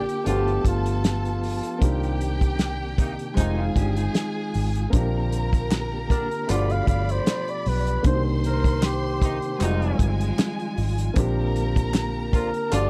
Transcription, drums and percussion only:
0.09 closed hi-hat soft
0.26 closed hi-hat medium
0.48 closed hi-hat soft
0.65 kick medium
0.65 closed hi-hat medium
0.86 closed hi-hat medium
1.04 snare loud
1.04 closed hi-hat medium
1.25 closed hi-hat soft
1.43 open hi-hat medium
1.63 closed hi-hat soft
1.82 kick loud
1.82 closed hi-hat medium
2.03 closed hi-hat soft
2.21 closed hi-hat medium
2.41 kick medium
2.41 closed hi-hat soft
2.59 snare loud
2.59 closed hi-hat medium
2.98 kick medium
2.98 closed hi-hat medium
3.19 closed hi-hat soft
3.37 kick medium
3.37 closed hi-hat medium
3.76 kick medium
3.76 closed hi-hat medium
3.97 closed hi-hat medium
4.14 snare medium
4.14 closed hi-hat medium
4.54 open hi-hat medium
4.75 closed hi-hat soft
4.93 kick loud
4.93 closed hi-hat medium
5.32 closed hi-hat medium
5.53 kick medium
5.53 closed hi-hat soft
5.71 snare loud
5.71 clap medium
5.71 closed hi-hat medium
6.10 kick medium
6.10 closed hi-hat medium
6.31 closed hi-hat soft
6.49 clap medium
6.49 closed hi-hat medium
6.70 closed hi-hat soft
6.87 kick medium
6.87 closed hi-hat medium
7.09 closed hi-hat medium
7.26 snare loud
7.26 clap medium
7.26 closed hi-hat medium
7.48 closed hi-hat soft
7.66 open hi-hat medium
7.87 closed hi-hat soft
8.04 kick loud
8.04 closed hi-hat medium
8.44 closed hi-hat medium
8.64 kick medium
8.64 closed hi-hat soft
8.82 snare medium
8.82 clap medium
8.82 closed hi-hat medium
9.22 kick loud
9.22 closed hi-hat medium
9.42 closed hi-hat soft
9.60 clap medium
9.60 closed hi-hat loud
9.82 closed hi-hat soft
9.99 kick medium
9.99 closed hi-hat medium
10.21 closed hi-hat medium
10.38 snare loud
10.38 clap medium
10.38 closed hi-hat medium
10.60 closed hi-hat soft
10.78 open hi-hat medium
10.98 closed hi-hat medium
11.16 kick loud
11.16 closed hi-hat medium
11.56 closed hi-hat medium
11.76 kick medium
11.76 closed hi-hat soft
11.94 snare loud
11.94 clap medium
11.94 closed hi-hat medium
12.33 kick loud
12.33 closed hi-hat medium
12.54 closed hi-hat soft
12.72 clap medium
12.72 closed hi-hat loud

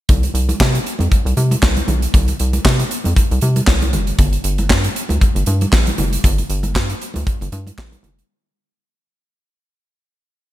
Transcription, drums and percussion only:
0.09 kick loud
0.09 closed hi-hat medium
0.09 muted conga soft
0.09 low conga medium
0.23 closed hi-hat medium
0.23 muted conga soft
0.35 closed hi-hat medium
0.49 closed hi-hat soft
0.49 high conga medium
0.60 kick medium
0.60 snare loud
0.60 clap medium
0.60 muted conga soft
0.74 closed hi-hat medium
0.74 muted conga soft
0.86 closed hi-hat medium
0.99 closed hi-hat soft
0.99 high conga medium
1.12 kick medium
1.12 closed hi-hat medium
1.26 closed hi-hat medium
1.26 muted conga soft
1.37 closed hi-hat medium
1.37 high conga medium
1.51 closed hi-hat soft
1.51 high conga medium
1.63 kick loud
1.63 snare loud
1.63 clap medium
1.77 closed hi-hat medium
1.77 high conga medium
1.88 closed hi-hat medium
1.88 high conga medium
1.88 low conga medium
2.02 closed hi-hat medium
2.14 kick loud
2.14 closed hi-hat medium
2.14 muted conga soft
2.14 low conga medium
2.28 closed hi-hat medium
2.28 muted conga soft
2.39 closed hi-hat medium
2.53 closed hi-hat soft
2.53 high conga medium
2.65 kick medium
2.65 snare loud
2.65 clap medium
2.65 muted conga soft
2.79 closed hi-hat medium
2.79 muted conga soft
2.91 closed hi-hat medium
3.04 closed hi-hat soft
3.04 high conga medium
3.16 kick medium
3.16 closed hi-hat medium
3.16 muted conga soft
3.31 closed hi-hat soft
3.41 closed hi-hat medium
3.41 high conga medium
3.56 closed hi-hat soft
3.56 high conga medium
3.67 kick loud
3.67 snare loud
3.67 clap medium
3.67 muted conga soft
3.82 closed hi-hat medium
3.82 high conga medium
3.93 closed hi-hat medium
3.93 high conga medium
3.93 low conga medium
4.07 closed hi-hat medium
4.19 kick loud
4.19 closed hi-hat medium
4.19 muted conga soft
4.19 low conga medium
4.33 closed hi-hat medium
4.44 closed hi-hat medium
4.58 closed hi-hat soft
4.58 high conga medium
4.70 kick medium
4.70 snare loud
4.70 clap medium
4.84 closed hi-hat medium
4.84 muted conga soft
4.96 closed hi-hat medium
5.09 closed hi-hat soft
5.09 high conga medium
5.21 kick medium
5.21 closed hi-hat medium
5.21 muted conga soft
5.36 closed hi-hat soft
5.36 muted conga soft
5.46 closed hi-hat medium
5.46 high conga medium
5.61 closed hi-hat soft
5.61 high conga medium
5.73 kick loud
5.73 snare loud
5.73 clap medium
5.87 closed hi-hat medium
5.87 high conga medium
5.98 closed hi-hat medium
5.98 high conga medium
5.98 low conga medium
6.13 closed hi-hat medium
6.24 kick loud
6.24 closed hi-hat medium
6.24 low conga medium
6.38 closed hi-hat soft
6.38 muted conga soft
6.50 closed hi-hat medium
6.63 closed hi-hat soft
6.63 high conga medium
6.74 kick medium
6.74 snare loud
6.74 clap medium
6.74 muted conga soft
6.90 closed hi-hat medium
6.90 muted conga soft
7.01 closed hi-hat medium
7.14 closed hi-hat medium
7.14 high conga medium
7.27 kick loud
7.27 closed hi-hat medium
7.41 closed hi-hat soft
7.41 muted conga soft
7.52 closed hi-hat medium
7.52 high conga medium
7.67 closed hi-hat soft
7.67 high conga medium
7.78 kick loud
7.78 snare loud
7.78 clap medium
7.92 closed hi-hat medium
7.92 muted conga soft
7.92 high conga medium
8.03 closed hi-hat medium
8.03 high conga medium
8.03 low conga medium
8.19 closed hi-hat soft

